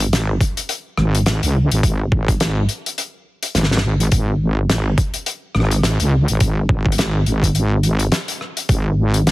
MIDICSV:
0, 0, Header, 1, 3, 480
1, 0, Start_track
1, 0, Tempo, 571429
1, 1542, Time_signature, 4, 2, 24, 8
1, 7825, End_track
2, 0, Start_track
2, 0, Title_t, "Wobble bass"
2, 0, Program_c, 0, 39
2, 0, Note_on_c, 0, 32, 96
2, 326, Note_off_c, 0, 32, 0
2, 819, Note_on_c, 0, 32, 96
2, 1177, Note_off_c, 0, 32, 0
2, 1198, Note_on_c, 0, 37, 95
2, 1417, Note_off_c, 0, 37, 0
2, 1437, Note_on_c, 0, 32, 100
2, 1524, Note_off_c, 0, 32, 0
2, 1539, Note_on_c, 0, 32, 92
2, 2245, Note_off_c, 0, 32, 0
2, 2981, Note_on_c, 0, 32, 95
2, 3446, Note_off_c, 0, 32, 0
2, 3460, Note_on_c, 0, 32, 94
2, 4165, Note_off_c, 0, 32, 0
2, 4663, Note_on_c, 0, 32, 96
2, 5019, Note_off_c, 0, 32, 0
2, 5042, Note_on_c, 0, 37, 95
2, 5259, Note_off_c, 0, 37, 0
2, 5282, Note_on_c, 0, 32, 99
2, 5367, Note_off_c, 0, 32, 0
2, 5381, Note_on_c, 0, 32, 96
2, 6085, Note_off_c, 0, 32, 0
2, 6103, Note_on_c, 0, 32, 99
2, 6807, Note_off_c, 0, 32, 0
2, 7300, Note_on_c, 0, 32, 92
2, 7825, Note_off_c, 0, 32, 0
2, 7825, End_track
3, 0, Start_track
3, 0, Title_t, "Drums"
3, 1, Note_on_c, 9, 42, 74
3, 85, Note_off_c, 9, 42, 0
3, 108, Note_on_c, 9, 42, 79
3, 110, Note_on_c, 9, 38, 117
3, 192, Note_off_c, 9, 42, 0
3, 194, Note_off_c, 9, 38, 0
3, 341, Note_on_c, 9, 36, 98
3, 344, Note_on_c, 9, 42, 53
3, 425, Note_off_c, 9, 36, 0
3, 428, Note_off_c, 9, 42, 0
3, 480, Note_on_c, 9, 42, 67
3, 564, Note_off_c, 9, 42, 0
3, 579, Note_on_c, 9, 42, 80
3, 663, Note_off_c, 9, 42, 0
3, 819, Note_on_c, 9, 37, 56
3, 903, Note_off_c, 9, 37, 0
3, 963, Note_on_c, 9, 42, 67
3, 1047, Note_off_c, 9, 42, 0
3, 1058, Note_on_c, 9, 42, 82
3, 1062, Note_on_c, 9, 38, 121
3, 1142, Note_off_c, 9, 42, 0
3, 1146, Note_off_c, 9, 38, 0
3, 1200, Note_on_c, 9, 42, 74
3, 1284, Note_off_c, 9, 42, 0
3, 1440, Note_on_c, 9, 42, 67
3, 1524, Note_off_c, 9, 42, 0
3, 1540, Note_on_c, 9, 36, 118
3, 1541, Note_on_c, 9, 42, 79
3, 1624, Note_off_c, 9, 36, 0
3, 1625, Note_off_c, 9, 42, 0
3, 1780, Note_on_c, 9, 36, 105
3, 1864, Note_off_c, 9, 36, 0
3, 1918, Note_on_c, 9, 36, 109
3, 1919, Note_on_c, 9, 42, 72
3, 2002, Note_off_c, 9, 36, 0
3, 2003, Note_off_c, 9, 42, 0
3, 2018, Note_on_c, 9, 42, 75
3, 2022, Note_on_c, 9, 38, 115
3, 2102, Note_off_c, 9, 42, 0
3, 2106, Note_off_c, 9, 38, 0
3, 2257, Note_on_c, 9, 42, 53
3, 2341, Note_off_c, 9, 42, 0
3, 2405, Note_on_c, 9, 42, 60
3, 2489, Note_off_c, 9, 42, 0
3, 2502, Note_on_c, 9, 42, 82
3, 2586, Note_off_c, 9, 42, 0
3, 2877, Note_on_c, 9, 42, 66
3, 2961, Note_off_c, 9, 42, 0
3, 2980, Note_on_c, 9, 38, 53
3, 2981, Note_on_c, 9, 42, 70
3, 3050, Note_off_c, 9, 38, 0
3, 3050, Note_on_c, 9, 38, 66
3, 3065, Note_off_c, 9, 42, 0
3, 3119, Note_off_c, 9, 38, 0
3, 3119, Note_on_c, 9, 38, 78
3, 3169, Note_off_c, 9, 38, 0
3, 3169, Note_on_c, 9, 38, 98
3, 3221, Note_on_c, 9, 37, 36
3, 3253, Note_off_c, 9, 38, 0
3, 3305, Note_off_c, 9, 37, 0
3, 3362, Note_on_c, 9, 42, 67
3, 3446, Note_off_c, 9, 42, 0
3, 3457, Note_on_c, 9, 42, 88
3, 3461, Note_on_c, 9, 36, 120
3, 3541, Note_off_c, 9, 42, 0
3, 3545, Note_off_c, 9, 36, 0
3, 3944, Note_on_c, 9, 38, 127
3, 3944, Note_on_c, 9, 42, 76
3, 4028, Note_off_c, 9, 38, 0
3, 4028, Note_off_c, 9, 42, 0
3, 4181, Note_on_c, 9, 36, 105
3, 4181, Note_on_c, 9, 42, 53
3, 4265, Note_off_c, 9, 36, 0
3, 4265, Note_off_c, 9, 42, 0
3, 4315, Note_on_c, 9, 42, 64
3, 4399, Note_off_c, 9, 42, 0
3, 4421, Note_on_c, 9, 42, 80
3, 4505, Note_off_c, 9, 42, 0
3, 4659, Note_on_c, 9, 37, 52
3, 4705, Note_off_c, 9, 37, 0
3, 4705, Note_on_c, 9, 37, 41
3, 4739, Note_off_c, 9, 37, 0
3, 4739, Note_on_c, 9, 37, 34
3, 4796, Note_off_c, 9, 37, 0
3, 4796, Note_on_c, 9, 37, 29
3, 4799, Note_on_c, 9, 42, 69
3, 4816, Note_off_c, 9, 37, 0
3, 4816, Note_on_c, 9, 37, 22
3, 4863, Note_off_c, 9, 37, 0
3, 4863, Note_on_c, 9, 37, 18
3, 4883, Note_off_c, 9, 42, 0
3, 4901, Note_on_c, 9, 38, 114
3, 4905, Note_on_c, 9, 42, 70
3, 4947, Note_off_c, 9, 37, 0
3, 4985, Note_off_c, 9, 38, 0
3, 4989, Note_off_c, 9, 42, 0
3, 5038, Note_on_c, 9, 42, 75
3, 5122, Note_off_c, 9, 42, 0
3, 5277, Note_on_c, 9, 42, 60
3, 5361, Note_off_c, 9, 42, 0
3, 5379, Note_on_c, 9, 42, 80
3, 5381, Note_on_c, 9, 36, 120
3, 5463, Note_off_c, 9, 42, 0
3, 5465, Note_off_c, 9, 36, 0
3, 5621, Note_on_c, 9, 36, 114
3, 5705, Note_off_c, 9, 36, 0
3, 5759, Note_on_c, 9, 36, 111
3, 5813, Note_on_c, 9, 42, 73
3, 5843, Note_off_c, 9, 36, 0
3, 5865, Note_off_c, 9, 42, 0
3, 5865, Note_on_c, 9, 42, 83
3, 5872, Note_on_c, 9, 38, 111
3, 5949, Note_off_c, 9, 42, 0
3, 5956, Note_off_c, 9, 38, 0
3, 6102, Note_on_c, 9, 42, 51
3, 6186, Note_off_c, 9, 42, 0
3, 6239, Note_on_c, 9, 36, 62
3, 6247, Note_on_c, 9, 42, 64
3, 6323, Note_off_c, 9, 36, 0
3, 6331, Note_off_c, 9, 42, 0
3, 6341, Note_on_c, 9, 42, 69
3, 6425, Note_off_c, 9, 42, 0
3, 6580, Note_on_c, 9, 42, 55
3, 6664, Note_off_c, 9, 42, 0
3, 6714, Note_on_c, 9, 42, 58
3, 6798, Note_off_c, 9, 42, 0
3, 6819, Note_on_c, 9, 42, 70
3, 6821, Note_on_c, 9, 38, 120
3, 6903, Note_off_c, 9, 42, 0
3, 6905, Note_off_c, 9, 38, 0
3, 6956, Note_on_c, 9, 42, 72
3, 7040, Note_off_c, 9, 42, 0
3, 7064, Note_on_c, 9, 37, 41
3, 7148, Note_off_c, 9, 37, 0
3, 7198, Note_on_c, 9, 42, 61
3, 7282, Note_off_c, 9, 42, 0
3, 7299, Note_on_c, 9, 42, 83
3, 7301, Note_on_c, 9, 36, 124
3, 7383, Note_off_c, 9, 42, 0
3, 7385, Note_off_c, 9, 36, 0
3, 7678, Note_on_c, 9, 42, 64
3, 7762, Note_off_c, 9, 42, 0
3, 7786, Note_on_c, 9, 42, 69
3, 7787, Note_on_c, 9, 38, 124
3, 7825, Note_off_c, 9, 38, 0
3, 7825, Note_off_c, 9, 42, 0
3, 7825, End_track
0, 0, End_of_file